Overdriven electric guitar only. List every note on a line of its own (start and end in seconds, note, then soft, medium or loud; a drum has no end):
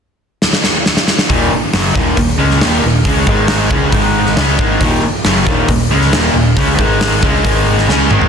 1.29 1.51 D#2 medium
1.29 1.51 A#2 loud
1.29 1.51 D#3 loud
1.52 muted overdriven electric guitar stroke medium
1.73 1.94 F#2 medium
1.73 1.95 C#3 medium
1.73 1.95 F#3 loud
1.95 2.15 D#2 medium
1.95 2.16 A#2 medium
1.95 2.17 D#3 medium
2.16 2.35 D#2 medium
2.16 2.35 A#2 medium
2.39 2.60 C#3 medium
2.39 2.61 G#3 medium
2.39 2.61 C#4 medium
2.61 2.82 D#2 medium
2.61 2.82 A#2 loud
2.61 2.83 D#3 loud
2.83 3.01 D#2 medium
2.83 3.01 A#2 medium
3.05 3.27 C#3 medium
3.05 3.27 G#3 loud
3.05 3.27 C#4 loud
3.28 3.71 G#2 medium
3.28 3.71 D#3 medium
3.28 3.71 G#3 medium
3.72 3.93 C#3 medium
3.72 3.93 G#3 medium
3.72 3.94 C#4 loud
3.93 4.36 G#2 medium
3.93 4.37 D#3 medium
3.93 4.37 G#3 loud
4.37 4.58 C#3 medium
4.37 4.58 G#3 loud
4.37 4.59 C#4 medium
4.58 4.80 G#2 medium
4.58 4.80 D#3 medium
4.58 4.81 G#3 medium
4.81 5.02 D#2 loud
4.81 5.03 A#2 loud
4.81 5.03 D#3 loud
5.03 muted overdriven electric guitar stroke medium
5.26 5.46 F#2 medium
5.26 5.46 C#3 loud
5.26 5.47 F#3 medium
5.46 5.68 D#2 medium
5.46 5.68 A#2 medium
5.46 5.68 D#3 medium
5.69 5.86 D#2 medium
5.69 5.87 A#2 medium
5.91 6.12 C#3 medium
5.91 6.12 G#3 medium
5.91 6.13 C#4 medium
6.13 6.34 D#2 medium
6.13 6.34 A#2 medium
6.13 6.35 D#3 medium
6.35 6.53 D#2 medium
6.35 6.53 A#2 medium
6.57 6.78 C#3 loud
6.57 6.79 G#3 medium
6.57 6.79 C#4 loud
6.78 7.22 G#2 medium
6.78 7.22 D#3 medium
6.78 7.22 G#3 medium
7.23 7.44 C#3 medium
7.23 7.44 G#3 loud
7.23 7.44 C#4 medium
7.44 7.88 G#2 medium
7.44 7.88 D#3 loud
7.44 7.88 G#3 medium
7.88 8.10 C#3 medium
7.88 8.10 G#3 medium
7.88 8.10 C#4 loud
8.11 8.29 G#2 medium
8.11 8.29 D#3 medium
8.11 8.29 G#3 medium